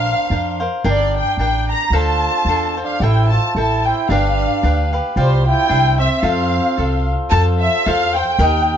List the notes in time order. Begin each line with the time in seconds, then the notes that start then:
Already playing: A#1 D4 A#4 C5 F5
0.30 F2 D4 A#4 C5 F5
0.60 A#4 C5 F5
0.84 G1 D4 A#4 D5 G5
0.89 D5
1.16 G5
1.37 A1 D4 A#4 D5 G5
1.70 A#5
1.90 D2 D4 F4 A4 C5 F5 A5
2.45 E2 D4
2.49 A4 C5 F5
2.77 A4 C5 F5
2.83 D4 F5
3.00 A1 E4 A4 C5 E5 G5
3.29 F4 A5
3.55 A1 E4 A4 C5 E5 G5 A5
3.84 E4 C5 E5 G5
4.09 G1 D4 G4 B4 F5
4.63 D2 D4 G4 B4 F5
4.93 G4 B4 F5
5.16 C2 G3 F4 G4 C5 F5
5.46 E4 G5
5.69 C2 D4 G4 C5 E5
5.97 C4 G4 C5 E5
6.23 F2 C4 F4 A4 C5 F5
6.77 C2 F4 A4 C5 F5
7.30 F2 F4 A4 C5 F5 A5
7.60 E5
7.86 E2 F4 A4 C5 F5
8.14 A4 C5 F5 G5
8.39 D#2 G4 A#4 D#5 G5